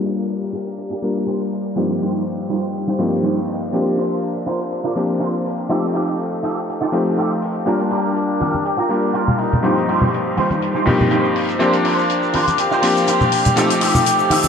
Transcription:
Already playing: G3 A#3 D4 F4 G4 A#4 D5 F5 A#5
0.03 G4 A#4 F5, open hi-hat
0.29 closed hi-hat
0.41 muted clean electric guitar stroke
0.52 G4 A#4 F5, open hi-hat
0.67 closed hi-hat
0.77 muted clean electric guitar stroke, closed hi-hat
0.90 G4 A#4 F5
1.02 G3 A#3 D4 F4 A#4, open hi-hat
1.15 muted clean electric guitar stroke
1.26 G4 A#4 C5, closed hi-hat
1.51 muted clean electric guitar stroke, open hi-hat
1.65 closed hi-hat
1.76 G2 F3 G3 A#3 C4 D#4 F4 G4 C5 G5, closed hi-hat
1.90 closed hi-hat
2.00 G3 D#4 F4 G4 C5, open hi-hat
2.26 closed hi-hat
2.38 muted clean electric guitar stroke
2.49 G3 D#4 F4 G4 C5, open hi-hat
2.63 closed hi-hat
2.74 muted clean electric guitar stroke, closed hi-hat
2.87 G3 D#4 F4 G4 C5
2.98 G2 F3 A#3 C4 D#4 G4, open hi-hat
3.12 muted clean electric guitar stroke
3.23 G3 D#4 F4 G4 C5 G5, closed hi-hat
3.48 D#5, muted clean electric guitar stroke, open hi-hat
3.63 closed hi-hat
3.72 F3 A#3 C4 D4 F4 G4 A#4 C5, closed hi-hat
3.87 closed hi-hat
3.97 D4 F4 A#4 C5, open hi-hat
4.22 closed hi-hat
4.35 muted clean electric guitar stroke
4.46 D4 F4 A#4 C5, open hi-hat
4.60 closed hi-hat
4.71 muted clean electric guitar stroke, closed hi-hat
4.84 D4 F4 A#4 D5
4.95 F3 A#3 C4 D4 G4, open hi-hat
5.08 muted clean electric guitar stroke
5.20 D4 F4 A#4 C5, closed hi-hat
5.45 muted clean electric guitar stroke, open hi-hat
5.58 closed hi-hat
5.69 F3 A3 C4 D#4 F4 G4 A4, closed hi-hat
5.83 closed hi-hat
5.94 D#4 F4 G4 A4, open hi-hat
6.19 closed hi-hat
6.31 muted clean electric guitar stroke, closed hi-hat
6.43 D#4 F4 G4 A4, open hi-hat
6.57 closed hi-hat
6.68 muted clean electric guitar stroke, closed hi-hat
6.81 D#4 F4 G4 A4
6.92 F3 A3 C4 D#4 G4, open hi-hat
7.05 muted clean electric guitar stroke
7.17 D#4 F4 G4 A4, closed hi-hat
7.31 closed hi-hat
7.41 muted clean electric guitar stroke, open hi-hat
7.55 closed hi-hat
7.66 G3 A#3 D4 F4 G4 A#4, closed hi-hat, shaker
7.80 closed hi-hat, shaker
7.91 F4 G4 A#4, open hi-hat
8.05 shaker
8.16 closed hi-hat, shaker
8.28 muted clean electric guitar stroke, shaker
8.40 F4 G4 A#4, open hi-hat, high conga
8.54 closed hi-hat, high conga, shaker
8.64 G4, muted clean electric guitar stroke, closed hi-hat, shaker
8.77 F4 G4 A#4, shaker
8.89 G3 A#3 D4 F4 A#4, open hi-hat
9.02 muted clean electric guitar stroke, shaker
9.13 F4 G4 A#4, closed hi-hat, shaker
9.28 low conga, shaker
9.38 D#4, muted clean electric guitar stroke, open hi-hat
9.52 closed hi-hat, low conga, shaker
9.63 G2 F3 G3 A#3 C4 D#4 F4 G4 C5, closed hi-hat, shaker
9.78 closed hi-hat, shaker
9.87 G3 D#4 F4 G4 C5, open hi-hat
10.01 low conga, shaker
10.13 closed hi-hat, shaker
10.25 muted clean electric guitar stroke, shaker
10.36 G3 D#4 F4 G4 C5, open hi-hat, high conga
10.50 closed hi-hat, high conga, shaker
10.61 muted clean electric guitar stroke, closed hi-hat, shaker
10.74 G3 D#4 F4 G4 C5, shaker
10.85 G2 F3 A#3 C4 D#4 G4, open hi-hat, low conga
10.99 muted clean electric guitar stroke, low conga, shaker
11.10 G3 D#4 F4 G4 C5, closed hi-hat, shaker
11.25 shaker
11.35 muted clean electric guitar stroke, open hi-hat
11.48 closed hi-hat, shaker
11.59 F3 A#3 C4 D4 F4 G4 A#4 C5 F5, closed hi-hat, shaker
11.73 closed hi-hat, shaker
11.84 D4 F4 A#4 C5, open hi-hat
11.99 shaker
12.10 closed hi-hat, shaker
12.22 muted clean electric guitar stroke, shaker
12.33 D4 F4 A#4 C5, open hi-hat, high conga
12.47 closed hi-hat, high conga, shaker
12.58 G4, muted clean electric guitar stroke, closed hi-hat, shaker
12.71 D4 F4 A#4 C5, shaker
12.82 F3 A#3 C4 D4 G4, open hi-hat
12.96 muted clean electric guitar stroke, shaker
13.07 D4 F4 A#4 C5, closed hi-hat, shaker
13.21 low conga, shaker
13.32 muted clean electric guitar stroke, open hi-hat
13.45 closed hi-hat, low conga, shaker
13.56 F3 A3 C4 D#4 F4 G4 A4, closed hi-hat, shaker
13.70 closed hi-hat, shaker
13.81 D#4 F4 G4 A4, open hi-hat
13.95 low conga, shaker
14.06 closed hi-hat, shaker
14.19 muted clean electric guitar stroke, shaker
14.30 D#4 F4 G4 A4, open hi-hat, high conga
14.43 closed hi-hat, high conga, shaker

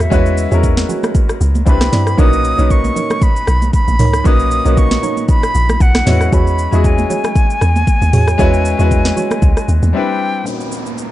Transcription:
Already playing: F#3 G#3 A#3 C#4 E4 F#4
0.00 E5, cross-stick, shaker
0.10 E2 G#3 C#4 E4 F#4 G#4 B4 C#5, kick, shaker
0.26 shaker
0.37 shaker
0.50 E2 G#3 C#4 E4 F#4 G#4 A#4 C#5, shaker
0.63 kick, shaker
0.77 snare, high conga, shaker
0.89 F#4 G#4 C#5, low conga, shaker
1.03 cross-stick, high conga, shaker
1.15 kick, shaker
1.29 cross-stick, shaker
1.41 C#2, shaker
1.55 high conga, shaker
1.66 C2 C4 D4 E4 G4 B4 B5, kick, shaker
1.81 cross-stick, snare, high conga, shaker
1.92 G2 E4 B4 D5, snare, open hi-hat, low conga, shaker
2.07 cross-stick, shaker
2.17 B1 A#2 C#4 D#4 F#4 A#4 B4 C#5 D#6, kick, shaker
2.33 shaker
2.44 shaker
2.57 B1 A#2 C#4 D#4 F#4 A#4 B4 C#5, shaker
2.70 C#6, kick, shaker
2.84 high conga, shaker
2.96 D#4 A#4 C#5, low conga, shaker
3.10 cross-stick, high conga, shaker
3.22 B5, kick, shaker
3.36 shaker
3.47 B1, cross-stick, shaker
3.62 high conga, shaker
3.73 B5, kick, shaker
3.88 A#1, high conga, shaker
3.99 C#2 D#4 A#4 C#5, mid tom, open hi-hat, low conga, shaker
4.13 cross-stick, shaker
4.24 B1 A#2 C#4 D#4 F#4 A#4 B4 C#5 D#6, kick, shaker
4.39 shaker
4.51 shaker
4.64 B1 A#2 C#4 D#4 F#4 A#4 B4 C#5, shaker
4.77 C#6, kick, shaker
4.91 snare, high conga, shaker
5.03 D#4 A#4 C#5, low conga, shaker
5.17 high conga, shaker
5.28 B5, kick, shaker
5.43 cross-stick, shaker
5.55 A#1, shaker
5.69 cross-stick, high conga, shaker
5.80 B1 F#5, kick, shaker
5.95 cross-stick, snare, high conga, shaker
6.05 E2 G#3 C#4 E4 F#4 G#4 B4 C#5, snare, mid tom, open hi-hat, low conga, shaker
6.21 cross-stick, shaker
6.32 E2 F#4 G#4 C#5 B5, kick, shaker
6.47 shaker
6.58 shaker
6.71 E2 G#3 C#4 E4 F#4 G#4 C#5, shaker
6.84 G#5, kick, shaker
6.98 high conga, shaker
7.10 F#4 G#4 C#5, low conga, shaker
7.24 cross-stick, high conga, shaker
7.36 kick, shaker
7.50 shaker
7.61 E2, cross-stick, shaker
7.76 high conga, shaker
7.87 kick, shaker
8.02 D#2, high conga, shaker
8.13 E2 F#4 G#4 C#5, mid tom, open hi-hat, low conga, shaker
8.28 cross-stick, shaker
8.38 E2 G#3 C#4 E4 F#4 G#4 B4 C#5, kick, shaker
8.54 shaker
8.65 shaker
8.78 E2 G#3 C#4 E4 F#4 G#4 B4 C#5, shaker
8.91 kick, shaker
9.05 snare, high conga, shaker
9.16 F#4 G#4 C#5, low conga, shaker
9.31 cross-stick, high conga, shaker
9.42 C#2, kick, shaker
9.57 cross-stick, shaker
9.68 D#2, shaker
9.83 E2, high conga, shaker
9.93 G3 C4 D4 E4 B4 G5
10.43 A#2 C#4 D#4 B5, downlifter, shaker
10.49 F#4 B4
10.60 shaker
10.72 shaker
10.86 shaker
10.98 A#5, shaker

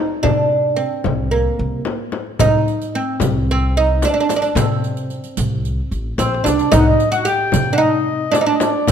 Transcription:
Already playing: D#4
0.11 darbuka ka
0.23 C3 D4, frame drum, darbuka dum
0.52 darbuka ka
0.65 darbuka ka
0.76 C4, darbuka ka
0.93 darbuka ka
1.04 C2, frame drum, darbuka dum
1.31 A#3, darbuka ka
1.59 C2, darbuka ka
1.85 darbuka tek, frame drum
2.12 darbuka tek, frame drum
2.27 darbuka ka
2.39 C2 D#4, riq, darbuka dum, frame drum
2.66 riq, darbuka ka
2.81 riq, darbuka ka
2.95 C4, darbuka ka
3.09 darbuka ka
3.20 C2, riq, frame drum, darbuka dum
3.50 C4, darbuka ka
3.77 D#4
4.02 D4, riq, darbuka tek, frame drum
4.14 D4
4.20 D4
4.29 D4, riq, darbuka tek, frame drum
4.36 D4
4.42 D4, riq, darbuka ka
4.55 C3 C4, riq, frame drum, darbuka dum
4.84 riq, darbuka ka
4.97 riq, darbuka ka
5.10 riq, darbuka ka
5.24 riq, darbuka ka
5.37 C2, riq, darbuka dum
5.65 riq, darbuka ka
5.91 A1, riq, darbuka ka
6.18 A#1 C4 C5, riq, darbuka tek, frame drum
6.34 darbuka ka
6.44 C2 D4 D5, riq, darbuka tek, frame drum
6.59 riq, darbuka ka
6.72 C2 D#4 D#5, riq, frame drum, darbuka dum
6.78 F#5
6.88 D#5
7.00 riq, darbuka ka
7.12 F#4 F#5, riq, darbuka ka
7.25 G4 G5, riq
7.43 darbuka ka
7.52 C3, riq, frame drum
7.56 darbuka dum
7.73 D4 F#5
7.78 D#4 D#5
8.08 darbuka ka
8.32 D4 D5, riq, darbuka tek, frame drum
8.41 D#4
8.46 D4 D5
8.54 D#5
8.60 D5, riq, darbuka tek, frame drum
8.76 darbuka ka
8.87 D#2 C4 C5, riq, frame drum

